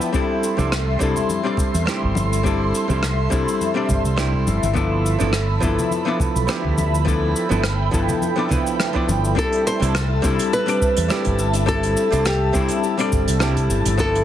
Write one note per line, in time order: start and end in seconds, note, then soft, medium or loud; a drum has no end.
0.00 0.10 F3 medium
0.00 0.10 B3 medium
0.00 0.11 D4 medium
0.00 0.11 E4 medium
0.00 4.72 A4 medium
0.00 0.12 D5 medium
0.00 0.10 E5 medium
0.00 0.11 G5 medium
0.00 0.10 B5 medium
0.00 cabasa medium
0.12 0.54 G3 medium
0.12 0.54 C4 medium
0.12 0.55 D4 medium
0.12 0.55 E4 medium
0.12 0.56 A4 loud
0.12 9.33 E5 medium
0.12 4.71 C6 medium
0.12 kick loud
0.12 cabasa soft
0.44 cabasa medium
0.57 0.97 C2 loud
0.57 0.70 G3 medium
0.57 0.71 C4 medium
0.57 0.71 D4 medium
0.57 0.72 E4 medium
0.57 0.72 A4 medium
0.57 high conga medium
0.57 cabasa soft
0.72 cross-stick medium
0.72 cabasa soft
0.99 1.14 C2 medium
0.99 1.41 G3 loud
0.99 1.41 C4 medium
0.99 1.41 D4 medium
0.99 1.42 E4 medium
0.99 1.42 A4 loud
0.99 kick medium
0.99 cabasa medium
1.16 low conga medium
1.16 cabasa medium
1.29 high conga medium
1.29 cabasa medium
1.43 1.83 G3 medium
1.43 1.84 C4 medium
1.43 1.84 D4 medium
1.43 1.85 D5 loud
1.57 kick loud
1.57 low conga medium
1.57 cabasa medium
1.74 1.85 E2 medium
1.74 cabasa medium
1.86 2.41 G3 medium
1.86 2.41 C4 medium
1.86 2.42 D4 medium
1.86 2.42 E4 medium
1.86 2.43 G4 medium
1.86 cross-stick medium
1.86 cabasa soft
2.03 2.70 G1 loud
2.03 kick medium
2.15 high conga medium
2.15 cabasa medium
2.33 cabasa medium
2.43 2.85 G3 medium
2.43 2.85 C4 medium
2.43 2.86 D4 medium
2.43 2.86 E4 medium
2.43 2.86 A4 loud
2.43 kick loud
2.43 cabasa soft
2.75 cabasa medium
2.88 3.28 C2 medium
2.88 3.01 G3 medium
2.88 3.02 C4 medium
2.88 3.02 D4 medium
2.88 3.03 E4 medium
2.88 3.03 A4 medium
2.88 high conga medium
2.88 cabasa soft
3.03 cross-stick medium
3.03 cabasa soft
3.30 3.45 C2 medium
3.30 3.71 G3 medium
3.30 3.72 C4 medium
3.30 3.72 D4 medium
3.30 3.73 E4 medium
3.30 3.73 A4 loud
3.30 kick loud
3.30 cabasa medium
3.48 cabasa medium
3.61 high conga medium
3.61 cabasa soft
3.74 4.14 G3 medium
3.74 4.14 C4 medium
3.74 4.15 D4 medium
3.74 4.15 D5 loud
3.89 4.02 G1 medium
3.89 kick loud
3.89 low conga medium
3.89 cabasa medium
4.05 4.44 C2 medium
4.05 cabasa medium
4.16 4.72 G3 medium
4.16 4.72 C4 medium
4.16 4.73 D4 medium
4.16 4.73 E4 medium
4.16 4.73 G4 medium
4.16 cross-stick loud
4.16 cabasa soft
4.34 kick medium
4.47 4.60 G1 medium
4.47 high conga medium
4.47 cabasa medium
4.63 5.16 G1 medium
4.63 cabasa medium
4.73 5.15 F3 medium
4.73 5.16 B3 medium
4.73 5.16 D4 medium
4.73 5.17 E4 medium
4.73 9.33 A4 medium
4.73 5.17 A4 loud
4.73 9.33 B5 medium
4.73 kick loud
4.73 cabasa soft
5.06 cabasa medium
5.19 5.59 G1 medium
5.19 5.32 F3 medium
5.19 5.33 B3 medium
5.19 5.33 D4 medium
5.19 5.33 E4 medium
5.19 5.34 A4 medium
5.19 high conga medium
5.19 cabasa soft
5.33 cross-stick medium
5.33 cabasa soft
5.60 5.76 G1 medium
5.60 6.02 F3 loud
5.60 6.02 B3 medium
5.60 6.03 D4 medium
5.60 6.03 E4 medium
5.60 6.04 A4 loud
5.60 kick medium
5.60 cabasa medium
5.79 low conga medium
5.79 cabasa medium
5.91 high conga medium
5.91 cabasa soft
6.05 6.45 F3 medium
6.05 6.45 B3 medium
6.05 6.46 D4 medium
6.05 6.46 E4 medium
6.05 6.46 D5 medium
6.20 kick loud
6.20 low conga medium
6.20 cabasa medium
6.36 6.47 B1 medium
6.36 cabasa medium
6.47 7.02 F3 medium
6.47 7.03 B3 medium
6.47 7.03 D4 medium
6.47 7.03 E4 medium
6.47 7.04 G4 medium
6.47 cross-stick loud
6.47 cabasa soft
6.64 7.32 D2 loud
6.64 kick medium
6.78 high conga medium
6.78 cabasa medium
6.95 cabasa medium
7.05 7.46 F3 loud
7.05 7.47 B3 medium
7.05 7.47 D4 medium
7.05 7.48 E4 medium
7.05 7.48 A4 loud
7.05 9.35 G5 medium
7.05 kick loud
7.05 cabasa soft
7.36 cabasa medium
7.49 7.90 G1 loud
7.49 7.63 F3 medium
7.49 7.63 B3 medium
7.49 7.64 D4 medium
7.49 7.64 E4 medium
7.49 7.64 A4 medium
7.49 high conga medium
7.49 cabasa soft
7.64 cross-stick loud
7.64 cabasa soft
7.91 8.06 G1 loud
7.91 8.33 F3 medium
7.91 8.33 B3 medium
7.91 8.34 D4 medium
7.91 8.34 E4 medium
7.91 8.34 A4 loud
7.91 kick loud
7.91 cabasa medium
8.09 low conga medium
8.09 cabasa medium
8.22 high conga medium
8.22 cabasa soft
8.36 8.47 F3 medium
8.36 8.47 B3 medium
8.36 8.48 D4 medium
8.36 8.48 E4 medium
8.36 8.49 D5 loud
8.49 8.90 F3 medium
8.49 8.91 B3 medium
8.49 8.91 D4 medium
8.49 8.92 E4 medium
8.49 8.92 B4 medium
8.49 kick loud
8.49 low conga medium
8.49 cabasa medium
8.67 cabasa medium
8.80 cross-stick medium
8.80 cabasa medium
8.93 9.33 F3 medium
8.93 9.33 B3 medium
8.93 9.34 D4 medium
8.93 9.34 E4 medium
8.93 9.34 D5 loud
8.93 kick medium
9.08 9.33 G1 loud
9.08 high conga medium
9.08 cabasa medium
9.25 cabasa medium
9.35 9.77 G3 medium
9.35 9.77 C4 medium
9.35 9.78 D4 medium
9.35 9.78 E4 medium
9.35 14.24 A4 medium
9.35 9.78 A4 loud
9.35 13.94 E5 medium
9.35 13.95 A5 medium
9.35 kick loud
9.35 cabasa soft
9.52 closed hi-hat soft
9.67 10.20 C5 loud
9.67 cabasa medium
9.80 10.20 C2 medium
9.80 9.93 G3 medium
9.80 9.94 C4 medium
9.80 9.94 D4 medium
9.80 9.95 E4 medium
9.80 9.95 A4 medium
9.80 closed hi-hat medium
9.80 cabasa soft
9.95 cross-stick loud
9.95 cabasa soft
10.22 10.37 C2 medium
10.22 10.64 G3 loud
10.22 10.64 C4 medium
10.22 10.64 D4 medium
10.22 10.65 E4 medium
10.22 10.65 A4 loud
10.22 kick loud
10.22 cabasa medium
10.39 closed hi-hat medium
10.39 cabasa medium
10.53 11.35 B4 loud
10.53 cabasa medium
10.66 11.06 G3 medium
10.66 11.06 C4 medium
10.66 11.07 D4 medium
10.66 11.08 D5 loud
10.66 closed hi-hat medium
10.81 kick loud
10.81 cabasa medium
10.96 11.08 E2 medium
10.96 closed hi-hat medium
10.96 cabasa medium
11.08 11.64 G3 medium
11.08 11.64 C4 medium
11.08 11.65 D4 medium
11.08 11.65 E4 medium
11.08 11.65 G4 medium
11.08 cross-stick loud
11.08 cabasa soft
11.25 11.94 G1 loud
11.25 kick medium
11.25 closed hi-hat medium
11.39 cabasa medium
11.53 closed hi-hat medium
11.53 cabasa medium
11.66 12.08 G3 loud
11.66 12.08 C4 medium
11.66 12.09 D4 medium
11.66 12.09 E4 medium
11.66 12.09 A4 loud
11.66 kick loud
11.66 cabasa medium
11.83 closed hi-hat soft
11.97 cabasa medium
12.11 12.51 C2 loud
12.11 12.24 G3 medium
12.11 12.25 C4 medium
12.11 12.25 D4 medium
12.11 12.26 E4 medium
12.11 12.26 A4 medium
12.11 closed hi-hat medium
12.11 cabasa medium
12.25 12.79 G4 loud
12.25 cross-stick loud
12.25 cabasa soft
12.53 12.68 C2 loud
12.53 12.95 G3 loud
12.53 12.95 C4 medium
12.53 12.95 D4 medium
12.53 12.96 E4 medium
12.53 12.96 A4 loud
12.53 kick loud
12.53 cabasa medium
12.69 closed hi-hat medium
12.69 cabasa medium
12.84 cabasa soft
12.98 13.37 G3 medium
12.98 13.38 C4 medium
12.98 13.38 D4 medium
12.98 13.39 D5 loud
12.98 closed hi-hat medium
13.12 13.26 G1 medium
13.12 kick loud
13.12 cabasa medium
13.28 13.67 C2 medium
13.28 closed hi-hat medium
13.28 cabasa medium
13.39 13.95 G3 medium
13.39 13.95 C4 medium
13.39 13.96 D4 medium
13.39 13.96 E4 medium
13.39 13.96 G4 medium
13.39 cross-stick medium
13.39 cabasa soft
13.57 kick medium
13.57 closed hi-hat medium
13.70 13.83 G1 medium
13.70 cabasa medium
13.85 14.24 G1 loud
13.85 closed hi-hat medium
13.85 cabasa medium
13.98 14.24 F3 loud
13.98 14.24 B3 medium
13.98 14.24 D4 medium
13.98 14.24 E4 medium
13.98 14.24 A4 loud
13.98 14.24 E5 medium
13.98 14.24 B5 medium
13.98 kick loud
13.98 cabasa medium
14.15 closed hi-hat soft